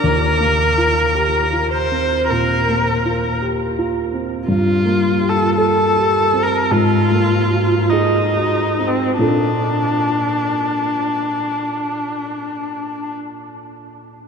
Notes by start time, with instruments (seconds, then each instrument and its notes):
Already playing: viola A#4
0.04 grand piano D#2
0.41 grand piano A#3
0.78 grand piano F4
1.15 grand piano G4
1.53 grand piano F4
1.72 viola C5
1.92 grand piano C4
2.30 grand piano A#2, viola A#4
2.69 grand piano A#3
3.06 grand piano F4
3.42 grand piano G4
3.79 grand piano F4
4.14 grand piano C4
4.48 grand piano G2, viola F4
4.85 grand piano A#3
5.20 grand piano G4
5.30 viola A4
5.58 viola A4, grand piano A4
5.96 grand piano G4
6.34 grand piano C4
6.43 viola A#4
6.71 grand piano G#2, viola F4
7.12 grand piano A#3
7.52 grand piano F#4
7.90 viola D#4, grand piano G#4
8.37 grand piano F#4
8.79 grand piano C4
8.87 viola C4
9.18 grand piano A#2 A#3 D4 F4 A4, viola D4